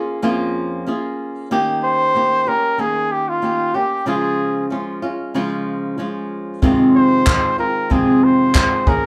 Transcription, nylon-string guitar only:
Already playing: A#3 C#4 F4 G#4
0.22 F2 F3 A#3 C#4 F4 G#4
0.87 A#3 C#4 F4 G#4
1.51 D#3 A#3 C#4 G4
2.15 D#3 A#3 C#4 G4
2.46 A#3 C#4 G4
2.78 D#3 A#3 C#4
3.42 D#3 A#3 C#4 G4
3.74 A#3 C#4 G4
4.06 C#3 F3 G#3 C#4 F4
4.70 F3 G#3 C#4 F4
5.02 G#3 C#4 F4
5.34 C#3 F3 G#3 C#4 F4
5.98 F3 G#3 C#4 F4
6.62 F2 C3 D#3 G#3 C4 F4
7.26 D#3 G#3 C4 F4
7.58 D#3 G#3 C4 F4
7.90 F2 C3 D#3 G#3 C4 F4
8.54 D#3 G#3 C4 F4
8.87 F3 A#3 C#4 G#4

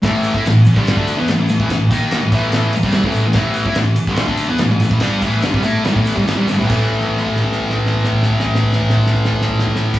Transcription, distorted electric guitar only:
0.02 A2 E3 A3
0.35 A3 E4
0.45 A2 E3
0.75 G2 D3 G3
0.97 D3 A3 D4
1.18 E3 B3
1.29 A2 E3
1.39 A2 E3
1.50 A2 E3
1.60 A2 E3
1.71 A2 E3
1.90 D#3 A#3 D#4
2.22 A2 E3
2.33 A2 E3 A3
2.76 muted distorted electric guitar stroke
2.83 C3 G3 C4
3.04 A2 E3 A3
3.26 A2 E3
3.35 A2 E3 A3
3.67 A3 E4
3.78 A2 E3
4.08 G2 D3 G3
4.28 D3 A3 D4
4.49 E3 B3
4.61 A2 E3
4.71 A2 E3
4.81 A2 E3
4.92 A2 E3
5.02 G3 D4 G4
5.22 A2 E3 A3
5.43 G2 D3
5.53 C3 G3
5.64 A3 E4 A4
5.85 C3 G3
5.94 A2 E3 A3
6.15 C3 G3
6.25 A2 E3
6.36 C3 G3
6.47 G2 D3
6.57 A2 E3
6.66 A2 E3 A3

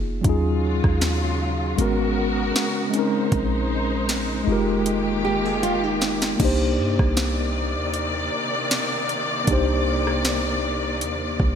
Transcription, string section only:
0.24 C#3 F#3 G#3 F4
1.79 B3 F#4 A#4
2.94 G#3 D#4 C5
4.47 D#3 A#3 G4
6.40 C3 D#3 A#3 D5

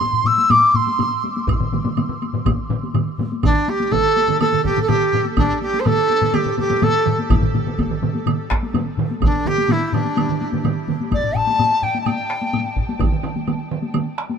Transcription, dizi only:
Already playing: C6
0.26 E6
0.51 D6
0.75 C6
3.44 D4
3.69 G4
3.92 A4
4.40 A4
4.64 G4
4.82 A4
4.88 G4
5.37 D4
5.62 G4
5.80 C5
5.86 A4
6.34 G4
6.59 G4
6.83 A4
9.24 D4
9.47 G4
9.71 E4
9.87 E4
9.93 D4
11.14 D5
11.36 A5
11.83 G5
12.01 A5
12.06 G5

